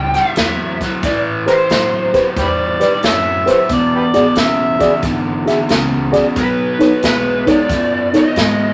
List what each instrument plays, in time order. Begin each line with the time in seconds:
Already playing: upright bass C#2, overdriven electric guitar A2 G3, lead electric guitar G5
0.14 overdriven electric guitar A2 G3, lead electric guitar E5, snare, closed hi-hat
0.36 upright bass E2, overdriven electric guitar A2 F#3, snare, closed hi-hat
0.81 overdriven electric guitar A2 F#3, kick, snare, closed hi-hat
1.03 upright bass A1, overdriven electric guitar A2 E3, lead electric guitar D5, kick, snare, closed hi-hat
1.46 overdriven electric guitar A2 E3, reed electric piano G4 B4 C5, lead electric guitar C5, snare, closed hi-hat
1.70 upright bass A1, overdriven electric guitar A2 F#3, snare, closed hi-hat
2.14 overdriven electric guitar A2 F#3, reed electric piano G4 B4 C5, kick, snare, closed hi-hat
2.36 upright bass E2, overdriven electric guitar A2 G3, harmonica G4 B4 D5, kick, snare, closed hi-hat
2.80 overdriven electric guitar A2 G3, reed electric piano G4 B4 D5, snare, closed hi-hat
3.03 upright bass F#2, overdriven electric guitar A2 F#3, harmonica A4 C#5 E5, snare, closed hi-hat
3.46 overdriven electric guitar A2 F#3, reed electric piano G4 B4 C5, snare, closed hi-hat
3.50 harmonica A4 C#5 E5
3.69 upright bass E1, overdriven electric guitar E2 B2, harmonica D5, kick, snare, closed hi-hat
3.96 harmonica G4 B4 D5
4.14 upright bass G#1, overdriven electric guitar E2 B2, reed electric piano F#4 G#4 D5, snare, closed hi-hat
4.36 upright bass B1, overdriven electric guitar E2 C#3, harmonica E5, snare, closed hi-hat
4.79 overdriven electric guitar E2 C#3, reed electric piano F#4 G#4 D5, kick, snare, closed hi-hat
5.03 upright bass G#1, overdriven electric guitar E2 D3, kick, snare, closed hi-hat
5.46 overdriven electric guitar E2 D3, reed electric piano F#4 G#4 E5, snare, closed hi-hat
5.69 upright bass C#2, overdriven electric guitar E2 C#3, snare, closed hi-hat
6.12 overdriven electric guitar E2 C#3, reed electric piano F#4 G#4 D5, kick, snare, closed hi-hat
6.36 upright bass B1, overdriven electric guitar B2 F#3, lead electric guitar B4, kick, snare, closed hi-hat
6.79 overdriven electric guitar B2 F#3, reed electric piano D#4 A4 C#5, snare, closed hi-hat
7.03 upright bass B1, overdriven electric guitar B2 G#3, lead electric guitar B4, snare, closed hi-hat
7.46 overdriven electric guitar B2 G#3, reed electric piano D#4 A4 C#5, lead electric guitar D5, kick, snare, closed hi-hat
7.69 upright bass F#2, overdriven electric guitar B2 A3, kick, snare, closed hi-hat
8.13 overdriven electric guitar B2 A3, reed electric piano D#4 A4 C#5, lead electric guitar D#5, snare, closed hi-hat
8.36 upright bass G#2, overdriven electric guitar B2 G#3, snare, closed hi-hat